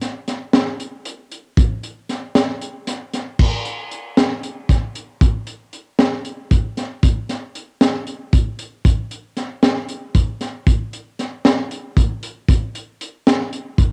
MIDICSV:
0, 0, Header, 1, 2, 480
1, 0, Start_track
1, 0, Tempo, 519481
1, 1456, Time_signature, 7, 3, 24, 8
1, 12866, End_track
2, 0, Start_track
2, 0, Title_t, "Drums"
2, 13, Note_on_c, 9, 38, 33
2, 13, Note_on_c, 9, 42, 64
2, 105, Note_off_c, 9, 38, 0
2, 105, Note_off_c, 9, 42, 0
2, 255, Note_on_c, 9, 38, 37
2, 255, Note_on_c, 9, 42, 60
2, 348, Note_off_c, 9, 38, 0
2, 348, Note_off_c, 9, 42, 0
2, 492, Note_on_c, 9, 38, 107
2, 492, Note_on_c, 9, 42, 82
2, 585, Note_off_c, 9, 38, 0
2, 585, Note_off_c, 9, 42, 0
2, 737, Note_on_c, 9, 42, 59
2, 829, Note_off_c, 9, 42, 0
2, 973, Note_on_c, 9, 42, 80
2, 1066, Note_off_c, 9, 42, 0
2, 1215, Note_on_c, 9, 42, 62
2, 1308, Note_off_c, 9, 42, 0
2, 1452, Note_on_c, 9, 42, 88
2, 1454, Note_on_c, 9, 36, 127
2, 1545, Note_off_c, 9, 42, 0
2, 1546, Note_off_c, 9, 36, 0
2, 1695, Note_on_c, 9, 42, 59
2, 1787, Note_off_c, 9, 42, 0
2, 1935, Note_on_c, 9, 38, 37
2, 1935, Note_on_c, 9, 42, 59
2, 2028, Note_off_c, 9, 38, 0
2, 2028, Note_off_c, 9, 42, 0
2, 2174, Note_on_c, 9, 38, 116
2, 2174, Note_on_c, 9, 42, 89
2, 2267, Note_off_c, 9, 38, 0
2, 2267, Note_off_c, 9, 42, 0
2, 2417, Note_on_c, 9, 42, 61
2, 2509, Note_off_c, 9, 42, 0
2, 2654, Note_on_c, 9, 38, 37
2, 2654, Note_on_c, 9, 42, 91
2, 2747, Note_off_c, 9, 38, 0
2, 2747, Note_off_c, 9, 42, 0
2, 2897, Note_on_c, 9, 38, 35
2, 2897, Note_on_c, 9, 42, 69
2, 2990, Note_off_c, 9, 38, 0
2, 2990, Note_off_c, 9, 42, 0
2, 3134, Note_on_c, 9, 49, 107
2, 3135, Note_on_c, 9, 36, 110
2, 3226, Note_off_c, 9, 49, 0
2, 3227, Note_off_c, 9, 36, 0
2, 3373, Note_on_c, 9, 42, 57
2, 3466, Note_off_c, 9, 42, 0
2, 3616, Note_on_c, 9, 42, 62
2, 3708, Note_off_c, 9, 42, 0
2, 3855, Note_on_c, 9, 38, 111
2, 3855, Note_on_c, 9, 42, 85
2, 3948, Note_off_c, 9, 38, 0
2, 3948, Note_off_c, 9, 42, 0
2, 4097, Note_on_c, 9, 42, 59
2, 4189, Note_off_c, 9, 42, 0
2, 4336, Note_on_c, 9, 36, 100
2, 4337, Note_on_c, 9, 38, 29
2, 4337, Note_on_c, 9, 42, 75
2, 4428, Note_off_c, 9, 36, 0
2, 4429, Note_off_c, 9, 38, 0
2, 4429, Note_off_c, 9, 42, 0
2, 4577, Note_on_c, 9, 42, 59
2, 4669, Note_off_c, 9, 42, 0
2, 4815, Note_on_c, 9, 36, 116
2, 4815, Note_on_c, 9, 42, 80
2, 4907, Note_off_c, 9, 36, 0
2, 4907, Note_off_c, 9, 42, 0
2, 5052, Note_on_c, 9, 42, 56
2, 5144, Note_off_c, 9, 42, 0
2, 5293, Note_on_c, 9, 42, 54
2, 5386, Note_off_c, 9, 42, 0
2, 5533, Note_on_c, 9, 38, 105
2, 5533, Note_on_c, 9, 42, 78
2, 5625, Note_off_c, 9, 38, 0
2, 5625, Note_off_c, 9, 42, 0
2, 5773, Note_on_c, 9, 42, 55
2, 5866, Note_off_c, 9, 42, 0
2, 6015, Note_on_c, 9, 42, 80
2, 6016, Note_on_c, 9, 36, 103
2, 6107, Note_off_c, 9, 42, 0
2, 6108, Note_off_c, 9, 36, 0
2, 6258, Note_on_c, 9, 38, 33
2, 6258, Note_on_c, 9, 42, 63
2, 6350, Note_off_c, 9, 38, 0
2, 6350, Note_off_c, 9, 42, 0
2, 6495, Note_on_c, 9, 42, 92
2, 6496, Note_on_c, 9, 36, 106
2, 6587, Note_off_c, 9, 42, 0
2, 6589, Note_off_c, 9, 36, 0
2, 6738, Note_on_c, 9, 38, 31
2, 6738, Note_on_c, 9, 42, 65
2, 6831, Note_off_c, 9, 38, 0
2, 6831, Note_off_c, 9, 42, 0
2, 6978, Note_on_c, 9, 42, 64
2, 7070, Note_off_c, 9, 42, 0
2, 7216, Note_on_c, 9, 38, 116
2, 7216, Note_on_c, 9, 42, 82
2, 7308, Note_off_c, 9, 38, 0
2, 7308, Note_off_c, 9, 42, 0
2, 7455, Note_on_c, 9, 42, 57
2, 7547, Note_off_c, 9, 42, 0
2, 7695, Note_on_c, 9, 42, 80
2, 7697, Note_on_c, 9, 36, 99
2, 7787, Note_off_c, 9, 42, 0
2, 7789, Note_off_c, 9, 36, 0
2, 7935, Note_on_c, 9, 42, 60
2, 8028, Note_off_c, 9, 42, 0
2, 8177, Note_on_c, 9, 36, 113
2, 8177, Note_on_c, 9, 42, 89
2, 8269, Note_off_c, 9, 36, 0
2, 8270, Note_off_c, 9, 42, 0
2, 8419, Note_on_c, 9, 42, 52
2, 8511, Note_off_c, 9, 42, 0
2, 8655, Note_on_c, 9, 38, 33
2, 8655, Note_on_c, 9, 42, 56
2, 8747, Note_off_c, 9, 38, 0
2, 8747, Note_off_c, 9, 42, 0
2, 8896, Note_on_c, 9, 38, 106
2, 8896, Note_on_c, 9, 42, 78
2, 8988, Note_off_c, 9, 38, 0
2, 8988, Note_off_c, 9, 42, 0
2, 9135, Note_on_c, 9, 42, 59
2, 9227, Note_off_c, 9, 42, 0
2, 9376, Note_on_c, 9, 42, 75
2, 9377, Note_on_c, 9, 36, 97
2, 9468, Note_off_c, 9, 42, 0
2, 9469, Note_off_c, 9, 36, 0
2, 9618, Note_on_c, 9, 38, 32
2, 9618, Note_on_c, 9, 42, 60
2, 9710, Note_off_c, 9, 38, 0
2, 9710, Note_off_c, 9, 42, 0
2, 9856, Note_on_c, 9, 36, 110
2, 9856, Note_on_c, 9, 42, 80
2, 9949, Note_off_c, 9, 36, 0
2, 9949, Note_off_c, 9, 42, 0
2, 10101, Note_on_c, 9, 42, 58
2, 10193, Note_off_c, 9, 42, 0
2, 10342, Note_on_c, 9, 38, 34
2, 10342, Note_on_c, 9, 42, 65
2, 10434, Note_off_c, 9, 38, 0
2, 10434, Note_off_c, 9, 42, 0
2, 10579, Note_on_c, 9, 38, 106
2, 10579, Note_on_c, 9, 42, 82
2, 10671, Note_off_c, 9, 38, 0
2, 10671, Note_off_c, 9, 42, 0
2, 10821, Note_on_c, 9, 42, 59
2, 10914, Note_off_c, 9, 42, 0
2, 11059, Note_on_c, 9, 36, 104
2, 11062, Note_on_c, 9, 42, 82
2, 11151, Note_off_c, 9, 36, 0
2, 11155, Note_off_c, 9, 42, 0
2, 11300, Note_on_c, 9, 42, 70
2, 11392, Note_off_c, 9, 42, 0
2, 11536, Note_on_c, 9, 42, 88
2, 11537, Note_on_c, 9, 36, 109
2, 11629, Note_off_c, 9, 42, 0
2, 11630, Note_off_c, 9, 36, 0
2, 11782, Note_on_c, 9, 42, 62
2, 11875, Note_off_c, 9, 42, 0
2, 12022, Note_on_c, 9, 42, 70
2, 12115, Note_off_c, 9, 42, 0
2, 12261, Note_on_c, 9, 38, 114
2, 12261, Note_on_c, 9, 42, 86
2, 12353, Note_off_c, 9, 38, 0
2, 12353, Note_off_c, 9, 42, 0
2, 12499, Note_on_c, 9, 42, 63
2, 12592, Note_off_c, 9, 42, 0
2, 12735, Note_on_c, 9, 36, 98
2, 12737, Note_on_c, 9, 42, 83
2, 12828, Note_off_c, 9, 36, 0
2, 12829, Note_off_c, 9, 42, 0
2, 12866, End_track
0, 0, End_of_file